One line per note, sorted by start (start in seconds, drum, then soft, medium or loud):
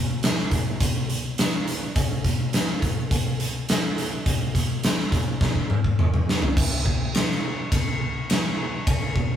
0.23 snare loud
0.23 closed hi-hat medium
0.39 snare soft
0.51 kick medium
0.51 closed hi-hat medium
0.80 kick loud
0.80 closed hi-hat medium
1.10 closed hi-hat medium
1.38 snare loud
1.38 closed hi-hat medium
1.67 closed hi-hat medium
1.96 kick loud
1.96 closed hi-hat medium
2.25 kick medium
2.25 closed hi-hat medium
2.53 snare loud
2.53 closed hi-hat medium
2.82 kick medium
2.82 closed hi-hat medium
3.11 kick loud
3.11 closed hi-hat medium
3.40 closed hi-hat medium
3.69 snare loud
3.69 closed hi-hat loud
3.98 closed hi-hat medium
4.26 kick loud
4.26 closed hi-hat medium
4.55 kick medium
4.55 closed hi-hat medium
4.83 snare loud
4.83 closed hi-hat loud
4.99 snare soft
5.12 kick medium
5.12 closed hi-hat medium
5.41 kick loud
5.41 snare medium
5.55 kick medium
5.70 mid tom medium
5.84 kick medium
5.99 mid tom medium
6.14 mid tom medium
6.29 snare medium
6.42 floor tom medium
6.57 kick loud
6.57 crash loud
6.86 kick medium
7.15 snare loud
7.15 ride bell medium
7.31 snare soft
7.72 kick loud
7.72 ride bell medium
8.30 snare loud
8.30 ride bell medium
8.87 kick loud
8.87 ride bell medium
9.16 kick medium